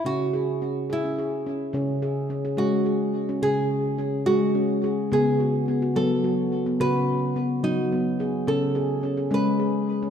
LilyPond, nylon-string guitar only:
\new Staff \with { instrumentName = "Nylon-string guitar" } { \time 6/8 \key cis \minor \tempo 4. = 71 fis'4. e'4 r8 | r4. fis'4. | gis'4. fis'4 r8 | gis'4 r8 a'4. |
b'4. dis'4 r8 | a'4 r8 b'4. | }